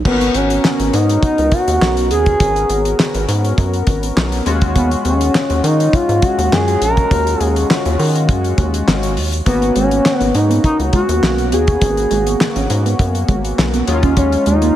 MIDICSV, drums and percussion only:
0, 0, Header, 1, 2, 480
1, 0, Start_track
1, 0, Tempo, 588235
1, 41, Time_signature, 4, 2, 24, 8
1, 12043, End_track
2, 0, Start_track
2, 0, Title_t, "Drums"
2, 43, Note_on_c, 9, 36, 121
2, 43, Note_on_c, 9, 49, 107
2, 124, Note_off_c, 9, 36, 0
2, 124, Note_off_c, 9, 49, 0
2, 171, Note_on_c, 9, 42, 52
2, 253, Note_off_c, 9, 42, 0
2, 281, Note_on_c, 9, 42, 73
2, 363, Note_off_c, 9, 42, 0
2, 410, Note_on_c, 9, 42, 59
2, 492, Note_off_c, 9, 42, 0
2, 526, Note_on_c, 9, 38, 118
2, 530, Note_on_c, 9, 39, 99
2, 608, Note_off_c, 9, 38, 0
2, 611, Note_off_c, 9, 39, 0
2, 650, Note_on_c, 9, 42, 57
2, 731, Note_off_c, 9, 42, 0
2, 763, Note_on_c, 9, 42, 79
2, 844, Note_off_c, 9, 42, 0
2, 893, Note_on_c, 9, 42, 54
2, 975, Note_off_c, 9, 42, 0
2, 1000, Note_on_c, 9, 36, 106
2, 1001, Note_on_c, 9, 42, 73
2, 1082, Note_off_c, 9, 36, 0
2, 1083, Note_off_c, 9, 42, 0
2, 1127, Note_on_c, 9, 42, 50
2, 1209, Note_off_c, 9, 42, 0
2, 1237, Note_on_c, 9, 42, 91
2, 1239, Note_on_c, 9, 36, 99
2, 1318, Note_off_c, 9, 42, 0
2, 1320, Note_off_c, 9, 36, 0
2, 1368, Note_on_c, 9, 42, 66
2, 1450, Note_off_c, 9, 42, 0
2, 1485, Note_on_c, 9, 38, 116
2, 1488, Note_on_c, 9, 39, 91
2, 1566, Note_off_c, 9, 38, 0
2, 1570, Note_off_c, 9, 39, 0
2, 1606, Note_on_c, 9, 42, 57
2, 1688, Note_off_c, 9, 42, 0
2, 1720, Note_on_c, 9, 42, 78
2, 1801, Note_off_c, 9, 42, 0
2, 1845, Note_on_c, 9, 42, 52
2, 1848, Note_on_c, 9, 36, 90
2, 1926, Note_off_c, 9, 42, 0
2, 1929, Note_off_c, 9, 36, 0
2, 1959, Note_on_c, 9, 42, 101
2, 1960, Note_on_c, 9, 36, 120
2, 2040, Note_off_c, 9, 42, 0
2, 2042, Note_off_c, 9, 36, 0
2, 2089, Note_on_c, 9, 42, 50
2, 2171, Note_off_c, 9, 42, 0
2, 2199, Note_on_c, 9, 42, 65
2, 2280, Note_off_c, 9, 42, 0
2, 2328, Note_on_c, 9, 42, 58
2, 2409, Note_off_c, 9, 42, 0
2, 2444, Note_on_c, 9, 38, 122
2, 2447, Note_on_c, 9, 39, 96
2, 2525, Note_off_c, 9, 38, 0
2, 2528, Note_off_c, 9, 39, 0
2, 2565, Note_on_c, 9, 42, 55
2, 2647, Note_off_c, 9, 42, 0
2, 2681, Note_on_c, 9, 42, 86
2, 2762, Note_off_c, 9, 42, 0
2, 2812, Note_on_c, 9, 42, 52
2, 2893, Note_off_c, 9, 42, 0
2, 2920, Note_on_c, 9, 36, 109
2, 2921, Note_on_c, 9, 42, 68
2, 3002, Note_off_c, 9, 36, 0
2, 3002, Note_off_c, 9, 42, 0
2, 3048, Note_on_c, 9, 42, 49
2, 3129, Note_off_c, 9, 42, 0
2, 3156, Note_on_c, 9, 42, 85
2, 3158, Note_on_c, 9, 36, 97
2, 3237, Note_off_c, 9, 42, 0
2, 3240, Note_off_c, 9, 36, 0
2, 3289, Note_on_c, 9, 42, 58
2, 3370, Note_off_c, 9, 42, 0
2, 3404, Note_on_c, 9, 38, 117
2, 3407, Note_on_c, 9, 39, 97
2, 3486, Note_off_c, 9, 38, 0
2, 3489, Note_off_c, 9, 39, 0
2, 3526, Note_on_c, 9, 42, 54
2, 3608, Note_off_c, 9, 42, 0
2, 3640, Note_on_c, 9, 42, 78
2, 3721, Note_off_c, 9, 42, 0
2, 3765, Note_on_c, 9, 42, 55
2, 3768, Note_on_c, 9, 36, 100
2, 3846, Note_off_c, 9, 42, 0
2, 3850, Note_off_c, 9, 36, 0
2, 3881, Note_on_c, 9, 36, 105
2, 3881, Note_on_c, 9, 42, 101
2, 3962, Note_off_c, 9, 42, 0
2, 3963, Note_off_c, 9, 36, 0
2, 4009, Note_on_c, 9, 42, 50
2, 4091, Note_off_c, 9, 42, 0
2, 4120, Note_on_c, 9, 42, 60
2, 4202, Note_off_c, 9, 42, 0
2, 4250, Note_on_c, 9, 42, 61
2, 4331, Note_off_c, 9, 42, 0
2, 4365, Note_on_c, 9, 38, 122
2, 4368, Note_on_c, 9, 39, 101
2, 4446, Note_off_c, 9, 38, 0
2, 4449, Note_off_c, 9, 39, 0
2, 4487, Note_on_c, 9, 42, 50
2, 4569, Note_off_c, 9, 42, 0
2, 4603, Note_on_c, 9, 42, 83
2, 4684, Note_off_c, 9, 42, 0
2, 4734, Note_on_c, 9, 42, 54
2, 4815, Note_off_c, 9, 42, 0
2, 4841, Note_on_c, 9, 36, 107
2, 4843, Note_on_c, 9, 42, 73
2, 4923, Note_off_c, 9, 36, 0
2, 4925, Note_off_c, 9, 42, 0
2, 4970, Note_on_c, 9, 42, 50
2, 5051, Note_off_c, 9, 42, 0
2, 5078, Note_on_c, 9, 42, 85
2, 5080, Note_on_c, 9, 36, 106
2, 5160, Note_off_c, 9, 42, 0
2, 5161, Note_off_c, 9, 36, 0
2, 5211, Note_on_c, 9, 42, 65
2, 5293, Note_off_c, 9, 42, 0
2, 5328, Note_on_c, 9, 38, 114
2, 5331, Note_on_c, 9, 39, 101
2, 5409, Note_off_c, 9, 38, 0
2, 5412, Note_off_c, 9, 39, 0
2, 5449, Note_on_c, 9, 42, 55
2, 5531, Note_off_c, 9, 42, 0
2, 5562, Note_on_c, 9, 42, 83
2, 5644, Note_off_c, 9, 42, 0
2, 5688, Note_on_c, 9, 42, 55
2, 5690, Note_on_c, 9, 36, 91
2, 5769, Note_off_c, 9, 42, 0
2, 5771, Note_off_c, 9, 36, 0
2, 5802, Note_on_c, 9, 42, 102
2, 5803, Note_on_c, 9, 36, 114
2, 5883, Note_off_c, 9, 42, 0
2, 5884, Note_off_c, 9, 36, 0
2, 5931, Note_on_c, 9, 42, 54
2, 6013, Note_off_c, 9, 42, 0
2, 6043, Note_on_c, 9, 42, 66
2, 6124, Note_off_c, 9, 42, 0
2, 6171, Note_on_c, 9, 42, 61
2, 6253, Note_off_c, 9, 42, 0
2, 6286, Note_on_c, 9, 38, 117
2, 6290, Note_on_c, 9, 39, 94
2, 6368, Note_off_c, 9, 38, 0
2, 6371, Note_off_c, 9, 39, 0
2, 6409, Note_on_c, 9, 42, 52
2, 6491, Note_off_c, 9, 42, 0
2, 6523, Note_on_c, 9, 46, 78
2, 6605, Note_off_c, 9, 46, 0
2, 6654, Note_on_c, 9, 42, 57
2, 6736, Note_off_c, 9, 42, 0
2, 6763, Note_on_c, 9, 36, 101
2, 6764, Note_on_c, 9, 42, 73
2, 6844, Note_off_c, 9, 36, 0
2, 6846, Note_off_c, 9, 42, 0
2, 6891, Note_on_c, 9, 42, 43
2, 6972, Note_off_c, 9, 42, 0
2, 7000, Note_on_c, 9, 42, 84
2, 7001, Note_on_c, 9, 36, 104
2, 7081, Note_off_c, 9, 42, 0
2, 7083, Note_off_c, 9, 36, 0
2, 7131, Note_on_c, 9, 42, 64
2, 7212, Note_off_c, 9, 42, 0
2, 7247, Note_on_c, 9, 38, 116
2, 7250, Note_on_c, 9, 39, 102
2, 7328, Note_off_c, 9, 38, 0
2, 7331, Note_off_c, 9, 39, 0
2, 7369, Note_on_c, 9, 42, 59
2, 7450, Note_off_c, 9, 42, 0
2, 7482, Note_on_c, 9, 46, 91
2, 7564, Note_off_c, 9, 46, 0
2, 7607, Note_on_c, 9, 42, 53
2, 7689, Note_off_c, 9, 42, 0
2, 7721, Note_on_c, 9, 42, 106
2, 7723, Note_on_c, 9, 36, 111
2, 7803, Note_off_c, 9, 42, 0
2, 7805, Note_off_c, 9, 36, 0
2, 7850, Note_on_c, 9, 42, 51
2, 7932, Note_off_c, 9, 42, 0
2, 7961, Note_on_c, 9, 42, 68
2, 8042, Note_off_c, 9, 42, 0
2, 8089, Note_on_c, 9, 42, 57
2, 8171, Note_off_c, 9, 42, 0
2, 8205, Note_on_c, 9, 38, 120
2, 8208, Note_on_c, 9, 39, 98
2, 8287, Note_off_c, 9, 38, 0
2, 8290, Note_off_c, 9, 39, 0
2, 8328, Note_on_c, 9, 42, 55
2, 8410, Note_off_c, 9, 42, 0
2, 8442, Note_on_c, 9, 42, 80
2, 8523, Note_off_c, 9, 42, 0
2, 8574, Note_on_c, 9, 42, 54
2, 8655, Note_off_c, 9, 42, 0
2, 8682, Note_on_c, 9, 36, 97
2, 8682, Note_on_c, 9, 42, 71
2, 8764, Note_off_c, 9, 36, 0
2, 8764, Note_off_c, 9, 42, 0
2, 8810, Note_on_c, 9, 42, 45
2, 8891, Note_off_c, 9, 42, 0
2, 8917, Note_on_c, 9, 42, 80
2, 8920, Note_on_c, 9, 36, 101
2, 8999, Note_off_c, 9, 42, 0
2, 9002, Note_off_c, 9, 36, 0
2, 9049, Note_on_c, 9, 42, 65
2, 9130, Note_off_c, 9, 42, 0
2, 9166, Note_on_c, 9, 38, 123
2, 9170, Note_on_c, 9, 39, 93
2, 9248, Note_off_c, 9, 38, 0
2, 9251, Note_off_c, 9, 39, 0
2, 9288, Note_on_c, 9, 42, 49
2, 9370, Note_off_c, 9, 42, 0
2, 9402, Note_on_c, 9, 42, 85
2, 9484, Note_off_c, 9, 42, 0
2, 9526, Note_on_c, 9, 42, 53
2, 9529, Note_on_c, 9, 36, 93
2, 9608, Note_off_c, 9, 42, 0
2, 9611, Note_off_c, 9, 36, 0
2, 9641, Note_on_c, 9, 42, 108
2, 9642, Note_on_c, 9, 36, 119
2, 9722, Note_off_c, 9, 42, 0
2, 9724, Note_off_c, 9, 36, 0
2, 9770, Note_on_c, 9, 42, 56
2, 9852, Note_off_c, 9, 42, 0
2, 9880, Note_on_c, 9, 42, 67
2, 9962, Note_off_c, 9, 42, 0
2, 10009, Note_on_c, 9, 42, 57
2, 10090, Note_off_c, 9, 42, 0
2, 10124, Note_on_c, 9, 38, 119
2, 10128, Note_on_c, 9, 39, 89
2, 10206, Note_off_c, 9, 38, 0
2, 10209, Note_off_c, 9, 39, 0
2, 10248, Note_on_c, 9, 42, 54
2, 10329, Note_off_c, 9, 42, 0
2, 10362, Note_on_c, 9, 42, 76
2, 10444, Note_off_c, 9, 42, 0
2, 10494, Note_on_c, 9, 42, 55
2, 10575, Note_off_c, 9, 42, 0
2, 10602, Note_on_c, 9, 36, 97
2, 10603, Note_on_c, 9, 42, 77
2, 10684, Note_off_c, 9, 36, 0
2, 10685, Note_off_c, 9, 42, 0
2, 10729, Note_on_c, 9, 42, 50
2, 10811, Note_off_c, 9, 42, 0
2, 10840, Note_on_c, 9, 42, 89
2, 10841, Note_on_c, 9, 36, 112
2, 10922, Note_off_c, 9, 36, 0
2, 10922, Note_off_c, 9, 42, 0
2, 10972, Note_on_c, 9, 42, 63
2, 11053, Note_off_c, 9, 42, 0
2, 11088, Note_on_c, 9, 38, 115
2, 11091, Note_on_c, 9, 39, 100
2, 11169, Note_off_c, 9, 38, 0
2, 11173, Note_off_c, 9, 39, 0
2, 11208, Note_on_c, 9, 42, 56
2, 11290, Note_off_c, 9, 42, 0
2, 11322, Note_on_c, 9, 42, 87
2, 11403, Note_off_c, 9, 42, 0
2, 11446, Note_on_c, 9, 42, 52
2, 11449, Note_on_c, 9, 36, 94
2, 11528, Note_off_c, 9, 42, 0
2, 11531, Note_off_c, 9, 36, 0
2, 11560, Note_on_c, 9, 42, 103
2, 11562, Note_on_c, 9, 36, 114
2, 11642, Note_off_c, 9, 42, 0
2, 11644, Note_off_c, 9, 36, 0
2, 11688, Note_on_c, 9, 42, 55
2, 11770, Note_off_c, 9, 42, 0
2, 11800, Note_on_c, 9, 42, 65
2, 11882, Note_off_c, 9, 42, 0
2, 11928, Note_on_c, 9, 42, 53
2, 12010, Note_off_c, 9, 42, 0
2, 12043, End_track
0, 0, End_of_file